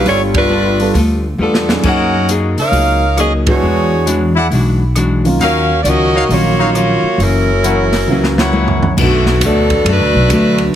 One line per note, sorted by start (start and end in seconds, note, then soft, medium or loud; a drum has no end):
0.00 0.47 G3 medium
0.00 0.47 B3 soft
0.00 0.47 D4 soft
0.00 0.47 F4 soft
0.00 0.47 G4 medium
0.05 0.90 G1 medium
0.05 0.36 G3 soft
0.05 0.20 A3 medium
0.05 0.36 B3 soft
0.05 0.20 D4 medium
0.05 0.73 F4 medium
0.05 0.20 F4 medium
0.05 0.37 F4 medium
0.05 0.73 A4 medium
0.05 0.38 A4 soft
0.05 0.73 B4 medium
0.05 0.20 C#5 loud
0.05 0.73 G5 medium
0.05 open hi-hat soft
0.34 0.92 A3 medium
0.34 0.92 D4 medium
0.34 0.92 F4 medium
0.34 0.92 B4 loud
0.34 kick medium
0.34 ride medium
0.49 0.80 G3 medium
0.49 0.81 B3 medium
0.49 0.81 F4 medium
0.49 0.82 A4 medium
0.80 0.93 G3 medium
0.80 0.94 B3 medium
0.80 0.94 D4 medium
0.80 0.94 F4 medium
0.80 0.94 A4 medium
0.80 open hi-hat soft
0.94 1.36 D2 medium
0.94 1.25 G3 soft
0.94 1.26 B3 soft
0.94 1.26 F4 soft
0.94 1.27 A4 medium
0.94 open hi-hat soft
1.38 1.80 E2 medium
1.38 1.70 G3 medium
1.38 1.70 B3 medium
1.38 1.82 B3 medium
1.38 1.81 D4 medium
1.38 1.82 F4 medium
1.38 1.71 F4 medium
1.38 1.82 A4 medium
1.38 1.71 A4 medium
1.54 snare medium
1.69 2.26 F#3 medium
1.69 2.26 A#3 medium
1.69 2.26 C#4 soft
1.69 2.26 D#4 soft
1.69 2.26 G#4 medium
1.69 snare medium
1.83 2.53 F#2 medium
1.83 2.14 F#3 soft
1.83 2.15 A#3 soft
1.83 2.29 D#4 medium
1.83 2.15 D#4 medium
1.83 2.52 F#4 medium
1.83 2.16 G#4 medium
1.83 2.52 A#4 medium
1.83 2.29 A#4 medium
1.83 2.29 C#5 medium
1.83 2.52 D#5 medium
1.83 2.29 F#5 loud
1.83 2.51 G#5 medium
1.83 kick medium
1.83 crash medium
2.29 2.59 F#3 medium
2.29 2.59 A#3 medium
2.29 2.60 D#4 medium
2.29 2.60 G#4 medium
2.29 closed hi-hat medium
2.57 2.71 C#3 medium
2.57 3.15 D#4 medium
2.57 3.15 A#4 medium
2.57 3.15 C#5 medium
2.57 3.15 F5 loud
2.57 open hi-hat soft
2.72 3.58 C#2 medium
2.72 3.03 F#3 soft
2.72 3.04 A#3 soft
2.72 3.04 D#4 soft
2.72 open hi-hat soft
2.76 3.05 G#4 soft
3.17 3.48 F#3 medium
3.17 3.49 A#3 medium
3.17 3.32 C#4 medium
3.17 3.49 D#4 medium
3.17 3.32 G#4 medium
3.17 3.49 G#4 medium
3.17 3.32 A#4 medium
3.17 3.32 D#5 medium
3.17 cross-stick medium
3.17 closed hi-hat soft
3.47 4.04 E3 medium
3.47 4.04 G#3 medium
3.47 4.04 B3 medium
3.47 4.33 B3 medium
3.47 4.04 D4 medium
3.47 4.05 F#4 medium
3.47 4.33 F#4 medium
3.47 4.33 G#4 medium
3.47 4.33 C#5 medium
3.47 kick medium
3.47 ride medium
3.62 4.47 E2 medium
3.62 3.93 E3 soft
3.62 3.94 G#3 soft
3.62 3.94 D4 soft
3.66 3.95 F#4 medium
4.06 4.37 E3 medium
4.06 4.37 G#3 medium
4.06 4.38 D4 medium
4.06 4.38 F#4 medium
4.06 closed hi-hat medium
4.36 4.46 E4 medium
4.36 4.46 G#4 medium
4.36 4.46 D5 medium
4.36 4.46 F#5 medium
4.50 5.36 B1 medium
4.50 4.82 E3 soft
4.50 4.83 G#3 medium
4.50 4.83 D4 soft
4.50 open hi-hat soft
4.55 4.84 F#4 medium
4.96 5.27 E3 medium
4.96 5.27 G#3 medium
4.96 5.27 D4 medium
4.96 5.28 F#4 medium
4.96 cross-stick medium
4.96 closed hi-hat soft
5.25 5.39 D#3 medium
5.25 5.39 F#3 soft
5.25 5.39 A#3 medium
5.25 5.39 C#4 soft
5.25 5.40 F4 medium
5.25 open hi-hat soft
5.39 5.81 D#2 medium
5.39 5.71 D#3 soft
5.39 5.72 F#3 soft
5.39 5.78 C#4 medium
5.39 5.72 C#4 medium
5.39 5.60 D#4 medium
5.39 5.61 F#4 medium
5.39 5.79 F#4 medium
5.39 5.79 A#4 loud
5.39 5.61 C#5 medium
5.39 5.60 F5 loud
5.39 5.79 F5 loud
5.39 open hi-hat soft
5.43 5.72 F4 medium
5.83 6.26 C#2 medium
5.83 6.16 D#3 medium
5.83 6.16 F#3 medium
5.83 5.86 D5 medium
5.83 closed hi-hat medium
5.87 6.17 C#4 medium
5.87 6.31 C#4 medium
5.87 6.17 F4 medium
5.87 6.31 F#4 medium
5.87 6.31 A#4 medium
5.87 6.31 D#5 loud
6.15 6.25 D#4 medium
6.15 6.25 F#4 medium
6.15 6.25 C#5 medium
6.15 6.25 F5 loud
6.29 6.99 A#1 medium
6.29 6.98 D#3 medium
6.29 6.61 D#3 soft
6.29 6.98 F#3 soft
6.29 6.61 F#3 soft
6.29 6.98 A#3 soft
6.29 7.20 A#3 medium
6.29 6.98 C#4 soft
6.29 6.62 C#4 soft
6.29 7.20 F4 medium
6.29 7.20 F#4 medium
6.29 7.20 C#5 medium
6.29 6.99 F5 medium
6.29 open hi-hat soft
6.34 6.62 F4 soft
6.59 6.69 D#4 medium
6.59 6.69 F#4 medium
6.59 6.70 C#5 medium
6.59 6.70 F5 medium
6.75 7.05 D#3 medium
6.75 7.05 F#3 medium
6.75 7.06 C#4 medium
6.75 7.06 F4 medium
6.75 cross-stick medium
6.75 closed hi-hat soft
7.02 muted upright bass stroke soft
7.18 8.03 F#1 medium
7.18 7.49 F#2 soft
7.18 7.50 E3 soft
7.18 8.82 F#3 medium
7.18 7.51 A#3 soft
7.18 8.82 C#4 medium
7.18 8.82 E4 medium
7.18 8.82 A#4 medium
7.18 open hi-hat soft
7.23 7.51 C#4 medium
7.64 7.94 F#2 medium
7.64 7.94 E3 medium
7.64 7.95 A#3 medium
7.64 7.95 C#4 medium
7.64 7.83 E4 medium
7.64 7.83 A#4 medium
7.64 7.83 C#5 medium
7.64 7.83 F#5 medium
7.64 closed hi-hat medium
7.92 snare soft
7.92 open hi-hat soft
8.07 8.93 C#2 medium
8.07 8.39 F#2 soft
8.07 8.76 E3 medium
8.07 8.40 E3 soft
8.07 8.76 F#3 medium
8.07 8.76 A#3 medium
8.07 8.76 C#4 medium
8.07 8.76 F#4 medium
8.12 8.40 A#3 medium
8.12 8.41 C#4 soft
8.24 snare medium
8.38 8.94 E4 medium
8.38 8.94 A#4 medium
8.38 8.94 C#5 medium
8.38 8.94 F#5 medium
8.38 snare medium
8.53 8.84 F#2 medium
8.53 8.84 E3 medium
8.53 8.84 A#3 medium
8.53 8.84 C#4 medium
8.53 high tom medium
8.68 floor tom medium
8.83 floor tom medium
8.97 9.40 B1 medium
8.97 9.28 B2 soft
8.97 9.39 D3 medium
8.97 9.28 F#3 medium
8.97 9.39 A3 medium
8.97 9.29 A3 medium
8.97 9.40 B3 medium
8.97 9.40 F#4 medium
8.97 kick medium
8.97 crash medium
9.01 9.29 D4 medium
9.26 snare soft
9.40 9.84 D2 medium
9.40 9.73 B2 medium
9.40 9.73 F#3 medium
9.40 hi-hat pedal medium
9.40 ride medium
9.45 9.87 F#3 medium
9.45 9.73 A3 medium
9.45 9.88 B3 medium
9.45 9.87 D4 medium
9.45 9.74 D4 medium
9.45 9.88 A4 medium
9.70 kick medium
9.70 ride soft
9.84 10.00 F#2 medium
9.84 10.16 B2 soft
9.84 10.17 F#3 soft
9.84 10.17 A3 soft
9.84 ride medium
9.89 10.72 A3 medium
9.89 10.17 D4 soft
9.89 10.72 D4 medium
9.89 10.72 F#4 medium
9.89 10.72 B4 medium
10.00 10.13 D2 medium
10.14 10.28 B1 medium
10.29 10.72 D2 medium
10.29 10.61 B2 medium
10.29 10.75 D3 medium
10.29 10.75 F#3 medium
10.29 10.62 F#3 medium
10.29 10.75 A3 medium
10.29 10.75 B3 medium
10.29 10.74 F#4 medium
10.29 hi-hat pedal medium
10.29 ride medium
10.33 10.62 A3 medium
10.33 10.62 D4 medium
10.58 ride soft